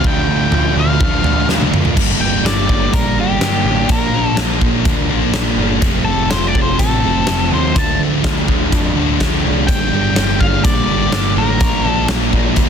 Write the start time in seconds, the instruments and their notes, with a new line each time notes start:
0.03 picked electric bass D2, distorted electric guitar D3 F3 A3 D4, clean electric guitar F4, lead electric guitar G5, kick
0.28 picked electric bass D2
0.51 picked electric bass D2, distorted electric guitar D3 F3 A3, clean electric guitar F4, floor tom
0.56 distorted electric guitar D4
0.75 picked electric bass D2, distorted electric guitar F3 A3 D4
0.80 lead electric guitar F5
0.99 picked electric bass D2, distorted electric guitar D3 F3 A3 D4, clean electric guitar F4, kick
1.23 picked electric bass D2, distorted electric guitar F3 A3 D4, clean electric guitar F4, floor tom
1.47 picked electric bass D2, clean electric guitar D3 A3 D4 F4, distorted electric guitar D3 F3 A3, snare
1.51 distorted electric guitar D4
1.61 high tom
1.71 picked electric bass D2, distorted electric guitar F3 A3 D4, clean electric guitar F4, mid tom
1.85 floor tom
1.94 picked electric bass G1, distorted electric guitar G2 D3 G3 A#3 D4, kick, crash
2.20 picked electric bass G1, clean electric guitar D3, distorted electric guitar G3 A#3 D4, lead electric guitar G5
2.43 picked electric bass G1, distorted electric guitar D3 G3 A#3, lead electric guitar D5, snare, closed hi-hat
2.47 distorted electric guitar D4
2.66 picked electric bass G1, distorted electric guitar G3 A#3 D4, kick
2.91 picked electric bass A#1, distorted electric guitar G2 D3 G3 A#3 D4, lead electric guitar A#4, kick, closed hi-hat
3.15 picked electric bass G1, distorted electric guitar G3 A#3 D4
3.20 lead electric guitar G4
3.40 picked electric bass G1, distorted electric guitar G2 D3 G3 A#3 D4, snare, closed hi-hat
3.64 picked electric bass A1, distorted electric guitar G3 A#3 D4, clean electric guitar D4
3.88 picked electric bass A#1, distorted electric guitar A#2 F3 A#3 D4, lead electric guitar A#4, kick, closed hi-hat
4.11 picked electric bass A#1, clean electric guitar D3, distorted electric guitar F3 A#3 D4
4.25 lead electric guitar A4
4.36 picked electric bass A#1, distorted electric guitar A#2 F3 A#3 D4, clean electric guitar D3, snare, closed hi-hat
4.61 picked electric bass A#1, distorted electric guitar F3 A#3 D4, kick
4.84 picked electric bass D2, distorted electric guitar A#2 F3 A#3 D4, kick, closed hi-hat
5.10 picked electric bass A#1, clean electric guitar D3, distorted electric guitar A#3 D4
5.14 distorted electric guitar F3
5.32 picked electric bass A#1, distorted electric guitar A#2 F3 A#3 D4, snare, closed hi-hat
5.57 picked electric bass G1, distorted electric guitar F3 A#3 D4, clean electric guitar D4
5.81 picked electric bass F1, distorted electric guitar F2 C3 F3 A3 C4, kick, closed hi-hat
6.05 picked electric bass F1, clean electric guitar C3, distorted electric guitar F3 A3 C4, lead electric guitar A4
6.30 picked electric bass F1, distorted electric guitar C3 F3 A3, lead electric guitar C5, snare, closed hi-hat
6.35 distorted electric guitar C4
6.47 lead electric guitar D5
6.54 picked electric bass F1, distorted electric guitar F3 A3 C4, kick
6.62 lead electric guitar C5
6.78 picked electric bass A1, distorted electric guitar F2 C3 F3 A3, lead electric guitar A4, kick, closed hi-hat
6.82 distorted electric guitar C4
7.03 picked electric bass F1, distorted electric guitar F3 A3 C4
7.26 picked electric bass F1, distorted electric guitar F2 C3 F3 A3 C4, snare, closed hi-hat
7.51 picked electric bass D#2, distorted electric guitar F3 A3 C4, clean electric guitar C4, lead electric guitar C5
7.75 picked electric bass D2, distorted electric guitar D3 F3 A3 D4, lead electric guitar A5, kick, closed hi-hat
7.99 picked electric bass D2, distorted electric guitar F3 A3 D4, clean electric guitar A3
8.23 picked electric bass D2, distorted electric guitar D3 F3 A3 D4, kick, snare, closed hi-hat
8.47 picked electric bass D2, distorted electric guitar F3 A3 D4, kick
8.70 picked electric bass F2, distorted electric guitar D3 F3 A3, clean electric guitar D4, kick, closed hi-hat
8.75 distorted electric guitar D4
8.93 picked electric bass D2, clean electric guitar D3, distorted electric guitar F3 A3 D4
9.18 picked electric bass D2, distorted electric guitar D3 F3 A3 D4, kick, snare, closed hi-hat
9.43 picked electric bass C2, distorted electric guitar F3 A3 D4, clean electric guitar D4
9.67 picked electric bass G1, distorted electric guitar G2 D3 G3 A#3 D4, lead electric guitar G5, kick, closed hi-hat
9.92 picked electric bass G1, distorted electric guitar G3 A#3 D4
10.13 picked electric bass G1, distorted electric guitar D3 G3 A#3 D4, snare, closed hi-hat
10.37 picked electric bass G1, distorted electric guitar G3 A#3 D4, lead electric guitar F5, kick
10.61 picked electric bass A#1, distorted electric guitar G2 D3 G3 A#3, lead electric guitar D5, kick, closed hi-hat
10.65 distorted electric guitar D4
10.88 picked electric bass G1, distorted electric guitar G3 A#3 D4
11.11 picked electric bass G1, distorted electric guitar G2 D3 G3 A#3 D4, snare, closed hi-hat
11.35 picked electric bass A1, distorted electric guitar G3 A#3 D4, lead electric guitar A#4
11.60 picked electric bass A#1, distorted electric guitar A#2 F3 A#3, kick, closed hi-hat
11.64 distorted electric guitar D4
11.84 picked electric bass A#1, distorted electric guitar F3 A#3 D4, lead electric guitar A4
12.08 picked electric bass A#1, distorted electric guitar A#2 F3 A#3 D4, snare, closed hi-hat
12.33 picked electric bass A#1, distorted electric guitar F3 A#3 D4, kick
12.56 picked electric bass D2, distorted electric guitar A#2 F3 A#3 D4, kick, closed hi-hat